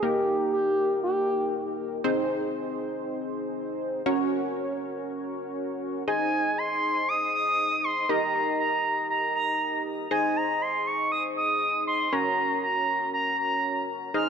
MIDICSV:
0, 0, Header, 1, 3, 480
1, 0, Start_track
1, 0, Key_signature, -4, "major"
1, 0, Tempo, 504202
1, 24, Time_signature, 4, 2, 24, 8
1, 13605, End_track
2, 0, Start_track
2, 0, Title_t, "Analog synth lead"
2, 0, Program_c, 0, 81
2, 23, Note_on_c, 0, 67, 93
2, 498, Note_off_c, 0, 67, 0
2, 503, Note_on_c, 0, 67, 89
2, 950, Note_off_c, 0, 67, 0
2, 984, Note_on_c, 0, 67, 81
2, 1666, Note_off_c, 0, 67, 0
2, 5784, Note_on_c, 0, 80, 100
2, 6264, Note_on_c, 0, 84, 100
2, 6278, Note_off_c, 0, 80, 0
2, 6744, Note_on_c, 0, 87, 111
2, 6759, Note_off_c, 0, 84, 0
2, 6979, Note_off_c, 0, 87, 0
2, 6985, Note_on_c, 0, 87, 121
2, 7465, Note_on_c, 0, 84, 104
2, 7479, Note_off_c, 0, 87, 0
2, 7705, Note_on_c, 0, 82, 104
2, 7719, Note_off_c, 0, 84, 0
2, 8179, Note_off_c, 0, 82, 0
2, 8185, Note_on_c, 0, 82, 94
2, 8631, Note_off_c, 0, 82, 0
2, 8665, Note_on_c, 0, 82, 89
2, 8888, Note_off_c, 0, 82, 0
2, 8906, Note_on_c, 0, 82, 90
2, 9351, Note_off_c, 0, 82, 0
2, 9626, Note_on_c, 0, 80, 100
2, 9866, Note_on_c, 0, 82, 99
2, 9880, Note_off_c, 0, 80, 0
2, 10106, Note_on_c, 0, 84, 99
2, 10120, Note_off_c, 0, 82, 0
2, 10345, Note_on_c, 0, 85, 106
2, 10360, Note_off_c, 0, 84, 0
2, 10579, Note_off_c, 0, 85, 0
2, 10585, Note_on_c, 0, 87, 106
2, 10693, Note_off_c, 0, 87, 0
2, 10825, Note_on_c, 0, 87, 117
2, 11271, Note_off_c, 0, 87, 0
2, 11305, Note_on_c, 0, 84, 102
2, 11545, Note_on_c, 0, 82, 105
2, 11559, Note_off_c, 0, 84, 0
2, 12019, Note_off_c, 0, 82, 0
2, 12025, Note_on_c, 0, 82, 97
2, 12471, Note_off_c, 0, 82, 0
2, 12505, Note_on_c, 0, 82, 91
2, 12728, Note_off_c, 0, 82, 0
2, 12745, Note_on_c, 0, 82, 90
2, 13191, Note_off_c, 0, 82, 0
2, 13466, Note_on_c, 0, 89, 98
2, 13605, Note_off_c, 0, 89, 0
2, 13605, End_track
3, 0, Start_track
3, 0, Title_t, "Analog polysynth"
3, 0, Program_c, 1, 90
3, 25, Note_on_c, 1, 58, 70
3, 25, Note_on_c, 1, 63, 65
3, 25, Note_on_c, 1, 67, 61
3, 25, Note_on_c, 1, 70, 75
3, 1906, Note_off_c, 1, 58, 0
3, 1907, Note_off_c, 1, 63, 0
3, 1907, Note_off_c, 1, 67, 0
3, 1907, Note_off_c, 1, 70, 0
3, 1945, Note_on_c, 1, 60, 82
3, 1945, Note_on_c, 1, 63, 76
3, 1945, Note_on_c, 1, 68, 79
3, 1945, Note_on_c, 1, 72, 94
3, 3826, Note_off_c, 1, 60, 0
3, 3826, Note_off_c, 1, 63, 0
3, 3826, Note_off_c, 1, 72, 0
3, 3827, Note_off_c, 1, 68, 0
3, 3865, Note_on_c, 1, 61, 83
3, 3865, Note_on_c, 1, 66, 74
3, 3865, Note_on_c, 1, 70, 75
3, 3865, Note_on_c, 1, 73, 89
3, 5746, Note_off_c, 1, 66, 0
3, 5746, Note_off_c, 1, 70, 0
3, 5746, Note_off_c, 1, 73, 0
3, 5747, Note_off_c, 1, 61, 0
3, 5784, Note_on_c, 1, 63, 70
3, 5784, Note_on_c, 1, 68, 64
3, 5784, Note_on_c, 1, 72, 65
3, 5784, Note_on_c, 1, 75, 77
3, 7666, Note_off_c, 1, 63, 0
3, 7666, Note_off_c, 1, 68, 0
3, 7666, Note_off_c, 1, 72, 0
3, 7666, Note_off_c, 1, 75, 0
3, 7705, Note_on_c, 1, 63, 70
3, 7705, Note_on_c, 1, 67, 65
3, 7705, Note_on_c, 1, 70, 66
3, 7705, Note_on_c, 1, 75, 77
3, 9586, Note_off_c, 1, 63, 0
3, 9586, Note_off_c, 1, 67, 0
3, 9586, Note_off_c, 1, 70, 0
3, 9586, Note_off_c, 1, 75, 0
3, 9624, Note_on_c, 1, 63, 71
3, 9625, Note_on_c, 1, 68, 65
3, 9625, Note_on_c, 1, 72, 67
3, 9625, Note_on_c, 1, 75, 78
3, 11506, Note_off_c, 1, 63, 0
3, 11506, Note_off_c, 1, 68, 0
3, 11506, Note_off_c, 1, 72, 0
3, 11506, Note_off_c, 1, 75, 0
3, 11544, Note_on_c, 1, 61, 71
3, 11544, Note_on_c, 1, 66, 65
3, 11544, Note_on_c, 1, 70, 65
3, 11544, Note_on_c, 1, 73, 81
3, 13426, Note_off_c, 1, 61, 0
3, 13426, Note_off_c, 1, 66, 0
3, 13426, Note_off_c, 1, 70, 0
3, 13426, Note_off_c, 1, 73, 0
3, 13464, Note_on_c, 1, 63, 72
3, 13464, Note_on_c, 1, 68, 63
3, 13464, Note_on_c, 1, 72, 64
3, 13464, Note_on_c, 1, 75, 78
3, 13605, Note_off_c, 1, 63, 0
3, 13605, Note_off_c, 1, 68, 0
3, 13605, Note_off_c, 1, 72, 0
3, 13605, Note_off_c, 1, 75, 0
3, 13605, End_track
0, 0, End_of_file